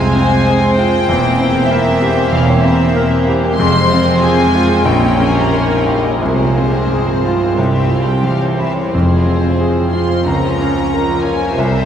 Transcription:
Already playing: C2 F2 C3 G#3 C4 F4 G#4 C5 G#5
0.12 C4 F4
0.29 C4
0.46 G#3 G#4
0.59 C4
0.75 F4 G5
0.92 C4
1.07 E1 E2 A#3 C4
1.22 C4
1.36 E4
1.40 C4
1.52 G4
1.68 A#3 C4 E4 A#4 E5
1.82 C4
1.97 A#3
2.01 G4
2.12 C4
2.28 E2 E4 F5
2.32 E1 E2
2.44 G4 C#5
2.61 C4 E4 E5
2.77 C4
2.94 A#3 A#4
3.09 C4
3.25 E4 G4
3.42 G4
3.56 F1 F2 G#3 C4 C5 C6
3.73 C4
3.89 F4
3.94 C4
4.05 G#4
4.18 F4 G#5
4.22 G#3 C4 G#4
4.37 C4
4.52 G#3 F4
4.67 C4
4.83 A#1 A#2 G3 A#3 C#4 A#4 G5
5.02 A#3
5.18 C#4
5.25 G#5
5.33 G4
5.41 A#5
5.49 C#4 D#4 A#4
5.54 C6
5.62 A#5
5.67 A#3 G#5
5.80 G5
5.85 G3 G4 F5
5.99 D#5
6.03 A#3
6.11 C#5
6.19 C2 C3 F3 G#3 C4 F4 G#4 C5
6.36 C4
6.55 C4 F4
6.72 C4
6.89 G2 G#3
6.94 G#4
7.06 C4
7.24 F4
7.40 C4
7.56 C2 C3 G3 E4 G4 C#5
7.73 C4 E5
7.89 G3 C4 E4 F5
8.07 C4 G5
8.23 E3 G3 G4 F5
8.40 C4 C#5
8.58 E4 E5
8.77 C4 C#5
8.92 F1 F2 F3 G#3 F4 G#4 C5
9.09 C4
9.26 C4 F4
9.43 C4
9.58 G#3 G#4
9.77 C4
9.93 F4 C6
10.10 C4
10.23 C#2 C#3 A#3 C#4 F4 A#4 A#5
10.44 C#4
10.61 C#4 F4
10.78 C#4
10.92 A#3 A#4
11.09 C#4
11.23 F4 G#5
11.40 C#4
11.55 C2 C3 G3 C4 G4 C5 E5
11.73 C4

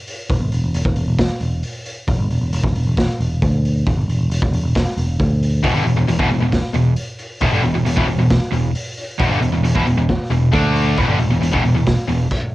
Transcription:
0.07 open hi-hat
0.30 E1, kick, open hi-hat
0.42 G1
0.52 E1, open hi-hat
0.64 E1
0.75 E1, open hi-hat
0.85 E1, kick
0.96 E1, open hi-hat
1.08 E1
1.19 kick, snare, open hi-hat
1.41 E1, open hi-hat
1.63 open hi-hat
1.86 open hi-hat
2.08 E1, kick, open hi-hat
2.19 G1
2.31 E1, open hi-hat
2.41 E1
2.53 E1, open hi-hat
2.63 E1, kick
2.76 E1, open hi-hat
2.87 E1
2.97 kick, snare, open hi-hat
3.20 E1, open hi-hat
3.42 D2, kick, open hi-hat
3.65 open hi-hat
3.86 E1, kick, open hi-hat
3.97 G1
4.08 E1, open hi-hat
4.19 E1
4.30 E1, open hi-hat
4.42 E1, kick
4.53 E1, open hi-hat
4.63 E1
4.75 kick, snare, open hi-hat
4.97 E1, open hi-hat
5.20 D2, kick, open hi-hat
5.43 open hi-hat
5.63 E1 E2 B2, kick, open hi-hat
5.74 G1 G2 D3
5.85 E1 E2 B2, open hi-hat
5.96 E1 E2 B2
6.07 E1 E2 B2, open hi-hat
6.19 E1 E2 B2, kick
6.29 E1 E2 B2, open hi-hat
6.40 E1 E2 B2
6.52 kick, snare, open hi-hat
6.73 E1 E2 B2, open hi-hat
6.96 open hi-hat
7.19 open hi-hat
7.41 E1 E2 B2, kick, open hi-hat
7.52 G1 G2 D3
7.62 E1 E2 B2, open hi-hat
7.74 E1 E2 B2
7.85 E1 E2 B2, open hi-hat
7.97 E1 E2 B2, kick
8.07 E1 E2 B2, open hi-hat
8.18 E1 E2 B2
8.30 kick, snare, open hi-hat
8.52 E1 E2 B2, open hi-hat
8.75 open hi-hat
8.97 open hi-hat
9.19 E1 E2 B2, kick, open hi-hat
9.29 G1 G2 D3
9.41 E1 E2 B2, open hi-hat
9.51 E1 E2 B2
9.63 E1 E2 B2, open hi-hat
9.75 E1 E2 B2, kick
9.85 E1 E2 B2, open hi-hat
9.97 E1 E2 B2
10.09 kick, snare, open hi-hat
10.30 E1 E2 B2, open hi-hat
10.52 D2 D3 A3 D4, kick, open hi-hat
10.76 open hi-hat
10.97 E1 E2 B2, kick, open hi-hat
11.08 G1 G2 D3
11.19 E1 E2 B2, open hi-hat
11.30 E1 E2 B2
11.41 E1 E2 B2, open hi-hat
11.52 E1 E2 B2, kick
11.64 E1 E2 B2, open hi-hat
11.75 E1 E2 B2
11.87 kick, snare, open hi-hat
12.08 E1 E2 B2, open hi-hat
12.31 kick, crash

